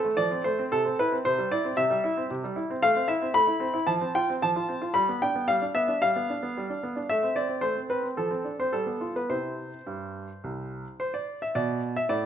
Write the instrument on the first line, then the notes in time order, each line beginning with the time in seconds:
grand piano
Already playing: A4
0.04 A3
0.17 F3 D5
0.31 C4
0.44 A3 C5
0.59 C4
0.72 C3 A4
0.85 C4
0.99 E4 B4
1.12 C4
1.25 C3 C5
1.38 G3
1.51 E4 D5
1.65 C4
1.77 C3 E5
1.90 G3
2.04 E4
2.17 C4
2.31 C3
2.44 G3
2.56 E4
2.70 C4
2.82 A3 F5
2.96 C4
3.08 E4 E5
3.22 C4
3.34 A3 B5
3.47 E4
3.60 C4
3.74 E4
3.87 F3 A5
4.01 C4
4.15 F4 G5
4.30 C4
4.42 F3 A5
4.56 F4
4.69 C4
4.82 F4
4.94 G3 B5
5.09 B3
5.22 D4 G5
5.35 B3
5.48 G3 F5
5.62 D4
5.75 B3 E5
5.88 D4
6.02 G3 F5
6.16 B3
6.30 D4
6.42 B3
6.57 G3
6.70 D4
6.83 B3
6.96 D4
7.09 A3 E5
7.23 C4
7.36 C4 D5
7.49 C4
7.61 A3 C5
7.76 C4
7.90 C4 B4
8.03 C4
8.17 F3 A4
8.31 C4
8.45 D4
8.59 C4 C5
8.73 G3 A4
8.86 B3
9.01 F4
9.16 B3 B4
9.30 C3 C4 E4 C5
9.87 G2
10.44 C2
11.00 C5
11.14 D5
11.42 E5
11.55 B2 D5
11.96 E5
12.09 A2 D5